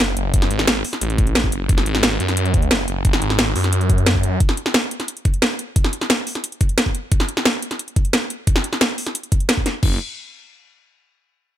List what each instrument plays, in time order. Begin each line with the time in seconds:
0.00 detuned saw bass F#1
0.17 detuned saw bass F#1, closed hi-hat
0.34 detuned saw bass F#1, kick, closed hi-hat
0.42 snare
0.51 detuned saw bass G#1, closed hi-hat
0.59 snare
0.68 snare, closed hi-hat
0.84 open hi-hat
0.93 snare
1.01 detuned saw bass A1, closed hi-hat
1.10 closed hi-hat
1.18 kick, closed hi-hat
1.27 closed hi-hat
1.35 snare, closed hi-hat
1.44 kick
1.52 detuned saw bass F#1, closed hi-hat
1.69 detuned saw bass F#1, kick, closed hi-hat
1.78 snare
1.86 detuned saw bass G#1, closed hi-hat
1.95 snare
2.03 snare, closed hi-hat
2.20 detuned saw bass F#2, closed hi-hat
2.29 snare, closed hi-hat
2.37 closed hi-hat
2.45 closed hi-hat
2.54 kick, closed hi-hat
2.62 closed hi-hat
2.71 detuned saw bass F#1, snare, closed hi-hat
2.88 detuned saw bass F#1, closed hi-hat
3.05 detuned saw bass F#1, kick, closed hi-hat
3.13 snare
3.22 detuned saw bass G#1, closed hi-hat
3.30 snare
3.39 snare, closed hi-hat
3.56 detuned saw bass F#2, open hi-hat
3.64 snare, closed hi-hat
3.73 closed hi-hat
3.81 closed hi-hat
3.90 kick, closed hi-hat
3.98 closed hi-hat
4.06 snare, closed hi-hat
4.15 kick
4.23 closed hi-hat
4.40 kick, closed hi-hat
4.49 snare
4.57 closed hi-hat
4.66 snare
4.74 snare, closed hi-hat
4.91 closed hi-hat
5.00 snare, closed hi-hat
5.08 closed hi-hat
5.17 closed hi-hat
5.25 kick, closed hi-hat
5.34 closed hi-hat
5.42 snare, closed hi-hat
5.59 closed hi-hat
5.76 kick, closed hi-hat
5.84 snare
5.93 closed hi-hat
6.01 snare
6.10 snare, closed hi-hat
6.27 open hi-hat
6.35 snare, closed hi-hat
6.44 closed hi-hat
6.52 closed hi-hat
6.61 kick, closed hi-hat
6.69 closed hi-hat
6.78 snare, closed hi-hat
6.86 kick
6.95 closed hi-hat
7.12 kick, closed hi-hat
7.20 snare
7.29 closed hi-hat
7.37 snare
7.45 snare, closed hi-hat
7.62 closed hi-hat
7.71 snare, closed hi-hat
7.79 closed hi-hat
7.88 closed hi-hat
7.96 kick, closed hi-hat
8.05 closed hi-hat
8.13 snare, closed hi-hat
8.30 closed hi-hat
8.47 kick, closed hi-hat
8.56 snare
8.64 closed hi-hat
8.73 snare
8.81 snare, closed hi-hat
8.98 open hi-hat
9.07 snare, closed hi-hat
9.15 closed hi-hat
9.23 closed hi-hat
9.32 kick, closed hi-hat
9.40 closed hi-hat
9.49 snare, closed hi-hat
9.57 kick
9.66 snare, closed hi-hat
9.83 detuned saw bass F#1, kick, crash